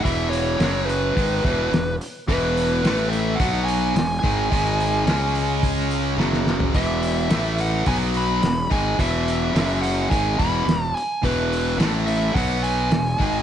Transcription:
0.03 0.57 E1 medium
0.03 0.59 E2 medium
0.03 0.60 B2 medium
0.03 0.60 E3 medium
0.03 0.30 E5 medium
0.03 kick medium
0.03 open hi-hat medium
0.30 0.89 C#5 medium
0.30 open hi-hat soft
0.59 1.12 F#1 medium
0.59 1.14 F#2 medium
0.59 1.15 C#3 medium
0.59 1.16 F#3 loud
0.59 snare loud
0.59 open hi-hat medium
0.85 1.94 B4 medium
0.89 open hi-hat soft
1.15 1.43 G#1 medium
1.15 1.42 G#2 medium
1.15 1.43 D#3 medium
1.15 1.44 G#3 medium
1.15 kick medium
1.15 open hi-hat soft
1.43 1.70 E1 medium
1.43 1.71 E2 medium
1.43 1.71 B2 medium
1.43 1.71 E3 medium
1.43 kick medium
1.43 open hi-hat soft
1.72 1.98 E1 medium
1.72 1.94 E2 medium
1.72 1.94 B2 medium
1.72 snare medium
1.72 open hi-hat soft
2.01 open hi-hat soft
2.28 2.80 E1 medium
2.28 2.83 E2 medium
2.28 2.83 B2 medium
2.28 2.83 E3 medium
2.28 3.15 B4 medium
2.28 kick medium
2.28 open hi-hat soft
2.57 open hi-hat soft
2.83 3.36 A1 medium
2.83 3.39 A2 medium
2.83 3.39 E3 medium
2.83 3.39 A3 medium
2.83 snare medium
2.83 open hi-hat medium
3.09 3.39 E5 medium
3.09 open hi-hat soft
3.36 3.94 B2 medium
3.36 3.64 F#5 medium
3.40 3.92 B1 medium
3.40 3.95 F#3 medium
3.40 3.95 B3 medium
3.40 kick medium
3.40 open hi-hat medium
3.65 4.18 G#5 medium
3.65 open hi-hat soft
3.95 4.22 E1 medium
3.95 4.17 E2 medium
3.95 4.17 B2 medium
3.95 snare medium
3.95 open hi-hat medium
4.19 4.49 G#2 medium
4.19 6.41 G#5 medium
4.23 4.50 G#1 medium
4.23 4.50 D#3 medium
4.23 4.50 G#3 medium
4.23 kick medium
4.23 open hi-hat soft
4.51 5.04 G#1 medium
4.51 5.06 G#2 medium
4.51 5.06 D#3 medium
4.51 5.05 G#3 medium
4.51 kick medium
4.51 open hi-hat medium
4.80 open hi-hat soft
5.06 6.15 C#2 medium
5.06 6.18 C#3 medium
5.06 6.18 G#3 medium
5.06 6.19 C#4 medium
5.06 snare loud
5.06 open hi-hat medium
5.35 open hi-hat soft
5.63 kick medium
5.63 open hi-hat medium
5.91 open hi-hat soft
6.18 6.71 F#1 medium
6.18 6.73 F#2 medium
6.18 6.74 C#3 medium
6.18 6.74 F#3 medium
6.18 snare soft
6.33 snare soft
6.47 snare medium
6.60 floor tom medium
6.74 7.27 E1 medium
6.74 7.30 E2 medium
6.74 7.29 B2 medium
6.74 7.29 E3 loud
6.74 7.62 E5 medium
6.74 kick medium
6.74 open hi-hat medium
7.03 open hi-hat soft
7.30 7.83 A1 medium
7.30 7.86 A2 medium
7.30 7.86 E3 medium
7.30 7.86 A3 medium
7.30 snare loud
7.30 open hi-hat medium
7.58 7.87 F#5 medium
7.58 open hi-hat soft
7.86 8.39 B1 medium
7.86 8.42 B2 medium
7.86 8.42 F#3 medium
7.86 8.43 B3 medium
7.86 7.95 G#5 medium
7.86 kick medium
7.86 open hi-hat medium
8.14 8.68 B5 medium
8.14 open hi-hat soft
8.43 8.69 E1 medium
8.43 8.65 E2 medium
8.43 8.65 B2 medium
8.43 snare medium
8.43 open hi-hat medium
8.70 8.97 G#1 medium
8.70 8.98 G#2 medium
8.70 8.98 D#3 medium
8.70 8.98 G#3 medium
8.70 9.00 G#5 medium
8.70 kick medium
8.70 open hi-hat soft
8.99 9.51 E1 medium
8.99 9.54 E2 medium
8.99 9.54 B2 medium
8.99 9.55 E3 loud
8.99 9.86 E5 medium
8.99 kick medium
8.99 open hi-hat medium
9.28 open hi-hat soft
9.54 10.08 F#1 medium
9.54 10.10 F#2 medium
9.54 10.10 C#3 medium
9.54 10.11 F#3 medium
9.54 snare medium
9.54 open hi-hat medium
9.81 10.09 F#5 medium
9.81 open hi-hat soft
10.10 10.37 G#1 medium
10.10 10.38 G#2 medium
10.10 10.38 D#3 medium
10.10 10.39 G#3 medium
10.10 10.39 G#5 medium
10.10 kick medium
10.10 open hi-hat medium
10.39 10.65 E1 medium
10.39 10.65 E2 medium
10.39 10.65 B2 medium
10.39 10.67 E3 medium
10.39 10.84 B5 medium
10.39 kick medium
10.39 open hi-hat soft
10.66 10.93 E1 medium
10.66 10.89 E2 medium
10.66 10.89 B2 medium
10.66 snare medium
10.66 open hi-hat medium
10.84 10.97 A5 medium
10.94 11.24 G#5 medium
10.94 open hi-hat soft
11.24 11.76 E1 medium
11.24 11.79 E2 medium
11.24 11.78 B2 medium
11.24 11.78 E3 medium
11.24 11.76 B4 medium
11.24 kick medium
11.24 open hi-hat medium
11.53 open hi-hat soft
11.78 12.31 A1 medium
11.78 12.34 A2 medium
11.78 12.34 E3 medium
11.78 12.35 A3 medium
11.78 snare loud
11.78 open hi-hat medium
12.07 12.36 E5 medium
12.07 open hi-hat soft
12.34 12.87 B1 medium
12.34 12.91 B2 medium
12.34 12.91 F#3 medium
12.34 12.92 B3 medium
12.34 12.63 F#5 medium
12.34 kick loud
12.34 open hi-hat medium
12.64 13.43 G#5 medium
12.64 open hi-hat soft
12.91 13.17 E1 medium
12.91 13.14 E2 medium
12.91 13.14 B2 medium
12.91 snare medium
12.91 open hi-hat medium
13.18 13.43 G#1 medium
13.18 13.43 G#2 medium
13.18 13.43 D#3 medium
13.18 13.43 G#3 medium
13.18 kick medium
13.18 open hi-hat soft

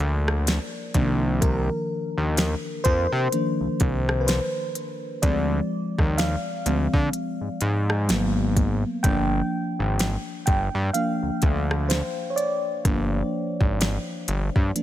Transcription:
0.00 0.59 D2 medium
0.00 0.90 D5 loud
0.28 cross-stick loud
0.47 snare loud
0.47 closed hi-hat medium
0.94 1.70 C2 loud
0.94 3.31 D#3 medium
0.94 3.32 F3 medium
0.94 3.32 A#3 medium
0.94 3.32 D4 medium
0.94 kick medium
0.94 closed hi-hat medium
1.41 2.89 A#4 medium
1.41 kick loud
1.41 closed hi-hat medium
2.18 2.55 D#2 medium
2.37 snare loud
2.37 closed hi-hat medium
2.84 3.07 F2 medium
2.84 3.76 C5 loud
2.84 kick loud
2.84 closed hi-hat medium
3.12 3.28 C3 loud
3.32 3.76 D#3 soft
3.32 3.76 F3 soft
3.32 3.76 A#3 soft
3.32 3.77 D4 medium
3.32 closed hi-hat medium
3.60 3.68 C2 medium
3.80 4.40 C2 medium
3.80 kick loud
3.80 closed hi-hat medium
4.09 cross-stick loud
4.21 4.27 B4 medium
4.27 5.25 C5 medium
4.27 snare loud
4.27 closed hi-hat medium
4.75 closed hi-hat medium
5.22 5.61 D2 loud
5.22 6.65 F3 medium
5.22 6.66 G#3 medium
5.22 6.66 C4 medium
5.22 6.21 D5 medium
5.22 kick loud
5.22 closed hi-hat medium
5.98 6.36 D#2 medium
5.98 kick medium
5.98 cross-stick medium
6.18 8.52 F5 loud
6.18 snare loud
6.18 closed hi-hat medium
6.66 6.88 D2 loud
6.66 7.10 F3 medium
6.66 7.10 G#3 soft
6.66 7.10 C4 medium
6.66 closed hi-hat medium
6.94 7.09 D3 loud
6.94 kick medium
7.13 closed hi-hat medium
7.41 7.49 G#2 medium
7.61 8.11 G#2 medium
7.61 closed hi-hat medium
7.90 cross-stick loud
8.08 8.84 G#1 loud
8.08 8.75 F#3 medium
8.08 8.75 A#3 medium
8.08 8.75 B3 medium
8.08 snare loud
8.08 closed hi-hat medium
8.56 kick medium
8.56 closed hi-hat medium
9.03 9.42 G1 loud
9.03 10.93 F3 medium
9.03 10.94 A#3 medium
9.03 10.94 D4 medium
9.03 10.45 G5 loud
9.03 kick loud
9.03 closed hi-hat medium
9.79 10.17 G#1 medium
9.99 snare loud
9.99 closed hi-hat medium
10.46 10.69 G1 loud
10.46 10.95 G5 loud
10.46 kick loud
10.46 closed hi-hat medium
10.75 10.90 G2 loud
10.93 11.38 F3 soft
10.93 11.38 A#3 soft
10.93 11.38 D4 medium
10.93 11.92 F5 medium
10.93 closed hi-hat medium
11.23 11.30 D2 soft
11.42 12.02 D2 medium
11.42 kick loud
11.42 closed hi-hat medium
11.71 cross-stick loud
11.89 12.32 C5 medium
11.89 snare loud
11.89 closed hi-hat medium
12.30 12.37 C#5 medium
12.36 13.28 D5 medium
12.36 closed hi-hat medium
12.84 13.23 G1 loud
12.84 14.24 F3 medium
12.84 14.24 A#3 medium
12.84 14.24 D4 medium
12.84 kick loud
12.84 closed hi-hat medium
13.61 13.98 G#1 medium
13.61 kick medium
13.81 snare loud
13.81 closed hi-hat medium
14.28 14.50 G1 loud
14.28 closed hi-hat medium
14.56 14.71 G2 loud
14.56 kick medium
14.75 14.83 F3 soft
14.75 14.83 A#3 soft
14.75 14.83 D4 medium
14.75 closed hi-hat medium

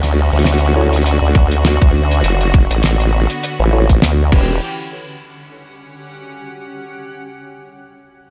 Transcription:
0.00 0.30 D2 loud
0.00 4.28 D3 medium
0.00 4.32 D3 medium
0.00 2.20 C#4 medium
0.00 4.28 F#4 medium
0.00 4.32 F#5 medium
0.00 snare soft
0.00 closed hi-hat medium
0.32 1.19 D2 loud
0.32 closed hi-hat soft
0.36 closed hi-hat soft
0.39 closed hi-hat soft
0.42 snare loud
0.42 closed hi-hat soft
0.45 closed hi-hat medium
0.49 closed hi-hat soft
0.54 closed hi-hat soft
0.58 4.32 C#5 medium
0.58 closed hi-hat medium
0.64 cross-stick soft
0.76 0.94 E4 medium
0.76 0.94 F#4 medium
0.76 0.94 A4 medium
0.76 0.94 C#5 loud
0.93 closed hi-hat medium
0.96 closed hi-hat soft
1.02 closed hi-hat soft
1.06 closed hi-hat medium
1.22 1.79 D2 loud
1.35 kick loud
1.51 closed hi-hat medium
1.65 snare loud
1.65 closed hi-hat medium
1.81 2.22 D2 loud
1.81 kick loud
1.94 cross-stick soft
2.11 closed hi-hat medium
2.24 2.68 F#1 loud
2.24 4.30 B3 medium
2.24 closed hi-hat medium
2.41 closed hi-hat medium
2.54 kick loud
2.71 3.27 A1 medium
2.71 closed hi-hat medium
2.83 snare loud
2.83 closed hi-hat medium
3.00 cross-stick soft
3.00 closed hi-hat soft
3.30 closed hi-hat medium
3.43 closed hi-hat medium
3.60 4.00 A1 loud
3.73 3.85 E4 medium
3.73 3.85 F#4 medium
3.73 3.85 A4 medium
3.73 3.85 C#5 medium
3.89 kick medium
3.89 closed hi-hat medium
4.02 4.31 D2 loud
4.02 snare loud
4.02 closed hi-hat medium
4.31 4.60 E1 loud
4.31 4.60 E3 medium
4.31 6.65 C#4 medium
4.31 4.55 C#4 medium
4.31 4.60 C#4 medium
4.31 4.55 F#4 medium
4.31 4.60 F#4 medium
4.31 4.55 G4 medium
4.31 4.60 G4 medium
4.31 4.55 B4 medium
4.31 kick loud
4.31 crash medium
4.42 6.65 G4 medium
4.80 6.95 F#5 medium

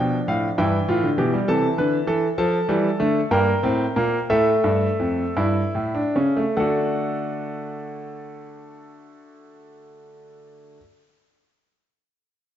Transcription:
0.00 0.17 B2 medium
0.00 0.56 F3 medium
0.00 0.56 D4 medium
0.00 0.17 G5 medium
0.28 0.47 A2 medium
0.28 0.47 F5 medium
0.58 0.77 G2 medium
0.58 1.02 E3 medium
0.58 0.77 E4 medium
0.58 1.46 G5 medium
0.88 1.07 A2 medium
0.88 1.07 F4 medium
1.03 1.18 D3 medium
1.18 1.37 B2 medium
1.18 1.33 E3 medium
1.18 1.37 G4 medium
1.33 1.48 G3 medium
1.48 1.67 C3 medium
1.48 2.06 E3 medium
1.48 1.67 A4 medium
1.48 2.36 A5 medium
1.78 1.97 D3 medium
1.78 1.97 B4 medium
2.07 2.26 E3 medium
2.07 2.26 A4 medium
2.38 2.57 F3 medium
2.38 3.28 A4 medium
2.38 3.28 A5 medium
2.69 2.88 E3 medium
2.69 2.88 G3 medium
3.00 3.19 D3 medium
3.00 3.19 A3 medium
3.31 3.51 G2 medium
3.31 3.51 A#3 medium
3.31 4.26 A#4 medium
3.31 4.26 G5 medium
3.63 3.84 A2 medium
3.63 3.83 C4 medium
3.96 4.17 A#2 medium
3.96 4.17 A#3 medium
4.30 4.51 A2 medium
4.30 5.33 A3 medium
4.30 6.53 A4 medium
4.30 6.53 E5 medium
4.64 4.86 G2 medium
4.99 5.22 F2 medium
5.37 5.60 G2 medium
5.37 5.93 E4 medium
5.75 6.00 A2 medium
5.95 6.14 D4 medium
6.16 6.41 C#3 medium
6.16 6.35 C#4 medium
6.37 6.55 A3 medium
6.57 10.77 D3 medium
6.57 10.77 A3 medium
6.57 10.80 D4 medium
6.57 10.80 F#4 medium
6.57 10.77 A4 medium
6.57 10.77 F#5 medium

